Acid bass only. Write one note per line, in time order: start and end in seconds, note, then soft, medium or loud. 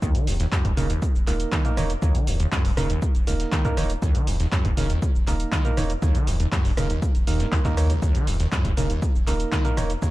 0.02 0.16 D#2 loud
0.15 0.29 D#3 loud
0.27 0.38 D#2 loud
0.40 0.47 D#2 loud
0.52 0.66 F#2 medium
0.65 0.72 G#2 medium
0.77 0.88 C#3 medium
0.90 1.00 D#2 medium
1.27 1.34 C#2 medium
1.52 1.66 D#3 medium
1.65 1.72 G#2 medium
1.77 1.84 D#3 medium
2.02 2.16 D#2 loud
2.15 2.29 D#3 loud
2.27 2.38 D#2 loud
2.40 2.47 D#2 loud
2.52 2.66 F#2 medium
2.65 2.72 G#2 medium
2.77 2.88 C#3 medium
2.90 3.00 D#2 medium
3.27 3.34 C#2 medium
3.52 3.66 D#3 medium
3.65 3.72 G#2 medium
3.77 3.84 D#3 medium
4.02 4.16 D#2 loud
4.15 4.29 D#3 loud
4.27 4.38 D#2 loud
4.40 4.47 D#2 loud
4.52 4.66 F#2 medium
4.65 4.72 G#2 medium
4.77 4.88 C#3 medium
4.90 5.00 D#2 medium
5.27 5.34 C#2 medium
5.52 5.66 D#3 medium
5.65 5.72 G#2 medium
5.77 5.84 D#3 medium
6.02 6.16 D#2 loud
6.15 6.29 D#3 loud
6.27 6.38 D#2 loud
6.40 6.47 D#2 loud
6.52 6.66 F#2 medium
6.65 6.72 G#2 medium
6.77 6.88 C#3 medium
6.90 7.00 D#2 medium
7.27 7.41 D#2 medium
7.40 7.47 G#2 medium
7.52 7.59 D#2 medium
7.65 7.75 D#2 medium
7.77 7.88 D#2 medium
7.90 8.00 C#2 medium
8.02 8.16 D#2 loud
8.15 8.29 D#3 loud
8.27 8.38 D#2 loud
8.40 8.47 D#2 loud
8.52 8.66 F#2 medium
8.65 8.72 G#2 medium
8.77 8.88 C#3 medium
8.90 9.00 D#2 medium
9.27 9.34 C#2 medium
9.52 9.66 D#3 medium
9.65 9.72 G#2 medium
9.77 9.84 D#3 medium
10.02 10.11 D#2 loud